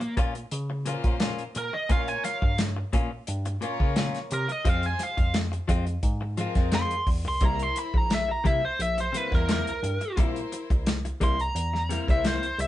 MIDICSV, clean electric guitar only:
0, 0, Header, 1, 3, 480
1, 0, Start_track
1, 0, Tempo, 689655
1, 1322, Time_signature, 4, 2, 24, 8
1, 8821, End_track
2, 0, Start_track
2, 0, Title_t, "Clean electric guitar"
2, 0, Program_c, 0, 27
2, 118, Note_on_c, 0, 46, 85
2, 122, Note_on_c, 0, 58, 84
2, 128, Note_on_c, 0, 61, 92
2, 132, Note_on_c, 0, 65, 92
2, 236, Note_off_c, 0, 65, 0
2, 242, Note_off_c, 0, 61, 0
2, 245, Note_off_c, 0, 46, 0
2, 246, Note_off_c, 0, 58, 0
2, 595, Note_on_c, 0, 46, 60
2, 606, Note_on_c, 0, 58, 69
2, 611, Note_on_c, 0, 61, 65
2, 618, Note_on_c, 0, 65, 68
2, 712, Note_off_c, 0, 65, 0
2, 720, Note_on_c, 0, 65, 55
2, 724, Note_off_c, 0, 46, 0
2, 724, Note_off_c, 0, 61, 0
2, 730, Note_off_c, 0, 58, 0
2, 732, Note_on_c, 0, 61, 53
2, 743, Note_on_c, 0, 58, 52
2, 833, Note_off_c, 0, 58, 0
2, 834, Note_on_c, 0, 46, 80
2, 838, Note_off_c, 0, 61, 0
2, 839, Note_off_c, 0, 65, 0
2, 841, Note_on_c, 0, 58, 88
2, 846, Note_on_c, 0, 61, 87
2, 851, Note_on_c, 0, 65, 84
2, 987, Note_off_c, 0, 46, 0
2, 990, Note_off_c, 0, 58, 0
2, 993, Note_off_c, 0, 61, 0
2, 995, Note_off_c, 0, 65, 0
2, 1318, Note_on_c, 0, 46, 63
2, 1324, Note_on_c, 0, 58, 78
2, 1327, Note_on_c, 0, 61, 75
2, 1333, Note_on_c, 0, 65, 80
2, 1469, Note_off_c, 0, 46, 0
2, 1472, Note_off_c, 0, 58, 0
2, 1473, Note_off_c, 0, 61, 0
2, 1476, Note_off_c, 0, 65, 0
2, 2039, Note_on_c, 0, 46, 84
2, 2045, Note_on_c, 0, 58, 86
2, 2048, Note_on_c, 0, 61, 105
2, 2054, Note_on_c, 0, 65, 86
2, 2156, Note_off_c, 0, 65, 0
2, 2165, Note_off_c, 0, 61, 0
2, 2166, Note_off_c, 0, 46, 0
2, 2168, Note_off_c, 0, 58, 0
2, 2513, Note_on_c, 0, 46, 65
2, 2523, Note_on_c, 0, 58, 68
2, 2529, Note_on_c, 0, 61, 70
2, 2534, Note_on_c, 0, 65, 69
2, 2632, Note_off_c, 0, 65, 0
2, 2641, Note_on_c, 0, 65, 59
2, 2643, Note_off_c, 0, 46, 0
2, 2645, Note_off_c, 0, 61, 0
2, 2648, Note_off_c, 0, 58, 0
2, 2653, Note_on_c, 0, 61, 51
2, 2665, Note_on_c, 0, 58, 52
2, 2755, Note_off_c, 0, 58, 0
2, 2756, Note_on_c, 0, 46, 90
2, 2759, Note_off_c, 0, 61, 0
2, 2759, Note_off_c, 0, 65, 0
2, 2764, Note_on_c, 0, 58, 86
2, 2768, Note_on_c, 0, 61, 95
2, 2773, Note_on_c, 0, 65, 94
2, 2908, Note_off_c, 0, 46, 0
2, 2912, Note_off_c, 0, 58, 0
2, 2914, Note_off_c, 0, 61, 0
2, 2916, Note_off_c, 0, 65, 0
2, 3234, Note_on_c, 0, 53, 68
2, 3239, Note_on_c, 0, 56, 71
2, 3245, Note_on_c, 0, 60, 83
2, 3249, Note_on_c, 0, 65, 77
2, 3387, Note_off_c, 0, 53, 0
2, 3389, Note_off_c, 0, 56, 0
2, 3393, Note_off_c, 0, 60, 0
2, 3394, Note_off_c, 0, 65, 0
2, 3953, Note_on_c, 0, 53, 80
2, 3959, Note_on_c, 0, 56, 95
2, 3965, Note_on_c, 0, 60, 100
2, 3967, Note_on_c, 0, 65, 99
2, 4073, Note_off_c, 0, 65, 0
2, 4077, Note_off_c, 0, 60, 0
2, 4083, Note_off_c, 0, 53, 0
2, 4084, Note_off_c, 0, 56, 0
2, 4437, Note_on_c, 0, 53, 63
2, 4445, Note_on_c, 0, 56, 66
2, 4453, Note_on_c, 0, 60, 65
2, 4460, Note_on_c, 0, 65, 79
2, 4552, Note_off_c, 0, 65, 0
2, 4561, Note_on_c, 0, 65, 56
2, 4565, Note_off_c, 0, 60, 0
2, 4566, Note_off_c, 0, 53, 0
2, 4570, Note_off_c, 0, 56, 0
2, 4573, Note_on_c, 0, 60, 44
2, 4582, Note_on_c, 0, 56, 41
2, 4671, Note_off_c, 0, 56, 0
2, 4673, Note_on_c, 0, 53, 73
2, 4674, Note_off_c, 0, 60, 0
2, 4679, Note_off_c, 0, 65, 0
2, 4679, Note_on_c, 0, 56, 79
2, 4682, Note_on_c, 0, 60, 74
2, 4688, Note_on_c, 0, 65, 87
2, 4826, Note_off_c, 0, 53, 0
2, 4829, Note_off_c, 0, 56, 0
2, 4831, Note_off_c, 0, 60, 0
2, 4834, Note_off_c, 0, 65, 0
2, 5161, Note_on_c, 0, 48, 69
2, 5167, Note_on_c, 0, 55, 70
2, 5170, Note_on_c, 0, 58, 77
2, 5175, Note_on_c, 0, 64, 81
2, 5310, Note_off_c, 0, 48, 0
2, 5313, Note_off_c, 0, 55, 0
2, 5315, Note_off_c, 0, 58, 0
2, 5317, Note_off_c, 0, 64, 0
2, 5874, Note_on_c, 0, 48, 78
2, 5880, Note_on_c, 0, 55, 87
2, 5884, Note_on_c, 0, 58, 81
2, 5889, Note_on_c, 0, 64, 91
2, 5998, Note_off_c, 0, 64, 0
2, 6003, Note_off_c, 0, 48, 0
2, 6004, Note_off_c, 0, 58, 0
2, 6006, Note_off_c, 0, 55, 0
2, 6352, Note_on_c, 0, 48, 61
2, 6364, Note_on_c, 0, 55, 58
2, 6368, Note_on_c, 0, 58, 62
2, 6376, Note_on_c, 0, 64, 64
2, 6471, Note_off_c, 0, 64, 0
2, 6480, Note_on_c, 0, 64, 51
2, 6482, Note_off_c, 0, 48, 0
2, 6486, Note_off_c, 0, 58, 0
2, 6488, Note_off_c, 0, 55, 0
2, 6495, Note_on_c, 0, 58, 46
2, 6503, Note_on_c, 0, 55, 47
2, 6597, Note_off_c, 0, 55, 0
2, 6598, Note_off_c, 0, 64, 0
2, 6598, Note_on_c, 0, 48, 80
2, 6601, Note_off_c, 0, 58, 0
2, 6605, Note_on_c, 0, 55, 79
2, 6610, Note_on_c, 0, 58, 87
2, 6614, Note_on_c, 0, 64, 86
2, 6748, Note_off_c, 0, 48, 0
2, 6752, Note_off_c, 0, 55, 0
2, 6754, Note_off_c, 0, 58, 0
2, 6756, Note_off_c, 0, 64, 0
2, 7080, Note_on_c, 0, 48, 67
2, 7087, Note_on_c, 0, 55, 79
2, 7090, Note_on_c, 0, 58, 78
2, 7098, Note_on_c, 0, 64, 84
2, 7229, Note_off_c, 0, 48, 0
2, 7232, Note_off_c, 0, 55, 0
2, 7234, Note_off_c, 0, 58, 0
2, 7238, Note_off_c, 0, 64, 0
2, 7800, Note_on_c, 0, 48, 76
2, 7805, Note_on_c, 0, 55, 73
2, 7811, Note_on_c, 0, 58, 88
2, 7818, Note_on_c, 0, 64, 97
2, 7919, Note_off_c, 0, 64, 0
2, 7925, Note_off_c, 0, 58, 0
2, 7926, Note_off_c, 0, 48, 0
2, 7928, Note_off_c, 0, 55, 0
2, 8279, Note_on_c, 0, 48, 56
2, 8289, Note_on_c, 0, 55, 59
2, 8296, Note_on_c, 0, 58, 57
2, 8300, Note_on_c, 0, 64, 60
2, 8395, Note_off_c, 0, 64, 0
2, 8404, Note_off_c, 0, 48, 0
2, 8404, Note_on_c, 0, 64, 55
2, 8405, Note_off_c, 0, 58, 0
2, 8410, Note_off_c, 0, 55, 0
2, 8414, Note_on_c, 0, 58, 51
2, 8424, Note_on_c, 0, 55, 46
2, 8514, Note_off_c, 0, 55, 0
2, 8516, Note_on_c, 0, 48, 72
2, 8517, Note_off_c, 0, 58, 0
2, 8519, Note_off_c, 0, 64, 0
2, 8522, Note_on_c, 0, 55, 71
2, 8526, Note_on_c, 0, 58, 82
2, 8532, Note_on_c, 0, 64, 88
2, 8666, Note_off_c, 0, 48, 0
2, 8669, Note_off_c, 0, 55, 0
2, 8671, Note_off_c, 0, 58, 0
2, 8674, Note_off_c, 0, 64, 0
2, 8821, End_track
3, 0, Start_track
3, 0, Title_t, "Muted clean electric guitar strokes"
3, 3, Note_on_c, 9, 29, 51
3, 72, Note_off_c, 9, 29, 0
3, 245, Note_on_c, 9, 29, 40
3, 314, Note_off_c, 9, 29, 0
3, 486, Note_on_c, 9, 29, 49
3, 555, Note_off_c, 9, 29, 0
3, 1077, Note_on_c, 9, 29, 40
3, 1147, Note_off_c, 9, 29, 0
3, 1206, Note_on_c, 9, 29, 46
3, 1276, Note_off_c, 9, 29, 0
3, 1556, Note_on_c, 9, 29, 41
3, 1625, Note_off_c, 9, 29, 0
3, 1685, Note_on_c, 9, 29, 47
3, 1754, Note_off_c, 9, 29, 0
3, 1796, Note_on_c, 9, 29, 36
3, 1866, Note_off_c, 9, 29, 0
3, 1925, Note_on_c, 9, 29, 51
3, 1994, Note_off_c, 9, 29, 0
3, 2165, Note_on_c, 9, 29, 47
3, 2234, Note_off_c, 9, 29, 0
3, 2407, Note_on_c, 9, 29, 53
3, 2476, Note_off_c, 9, 29, 0
3, 2997, Note_on_c, 9, 29, 39
3, 3067, Note_off_c, 9, 29, 0
3, 3122, Note_on_c, 9, 29, 44
3, 3191, Note_off_c, 9, 29, 0
3, 3472, Note_on_c, 9, 29, 38
3, 3541, Note_off_c, 9, 29, 0
3, 3601, Note_on_c, 9, 29, 48
3, 3670, Note_off_c, 9, 29, 0
3, 3716, Note_on_c, 9, 29, 37
3, 3786, Note_off_c, 9, 29, 0
3, 3841, Note_on_c, 9, 29, 47
3, 3910, Note_off_c, 9, 29, 0
3, 4082, Note_on_c, 9, 29, 44
3, 4151, Note_off_c, 9, 29, 0
3, 4322, Note_on_c, 9, 29, 50
3, 4391, Note_off_c, 9, 29, 0
3, 4919, Note_on_c, 9, 29, 38
3, 4989, Note_off_c, 9, 29, 0
3, 5046, Note_on_c, 9, 29, 49
3, 5116, Note_off_c, 9, 29, 0
3, 5403, Note_on_c, 9, 29, 42
3, 5472, Note_off_c, 9, 29, 0
3, 5531, Note_on_c, 9, 29, 45
3, 5600, Note_off_c, 9, 29, 0
3, 5639, Note_on_c, 9, 29, 35
3, 5709, Note_off_c, 9, 29, 0
3, 5767, Note_on_c, 9, 29, 42
3, 5837, Note_off_c, 9, 29, 0
3, 6006, Note_on_c, 9, 29, 41
3, 6075, Note_off_c, 9, 29, 0
3, 6248, Note_on_c, 9, 29, 41
3, 6317, Note_off_c, 9, 29, 0
3, 6843, Note_on_c, 9, 29, 40
3, 6913, Note_off_c, 9, 29, 0
3, 6969, Note_on_c, 9, 29, 46
3, 7038, Note_off_c, 9, 29, 0
3, 7323, Note_on_c, 9, 29, 48
3, 7393, Note_off_c, 9, 29, 0
3, 7452, Note_on_c, 9, 29, 51
3, 7521, Note_off_c, 9, 29, 0
3, 7565, Note_on_c, 9, 29, 40
3, 7635, Note_off_c, 9, 29, 0
3, 7691, Note_on_c, 9, 29, 46
3, 7761, Note_off_c, 9, 29, 0
3, 7928, Note_on_c, 9, 29, 40
3, 7997, Note_off_c, 9, 29, 0
3, 8168, Note_on_c, 9, 29, 44
3, 8237, Note_off_c, 9, 29, 0
3, 8761, Note_on_c, 9, 29, 43
3, 8821, Note_off_c, 9, 29, 0
3, 8821, End_track
0, 0, End_of_file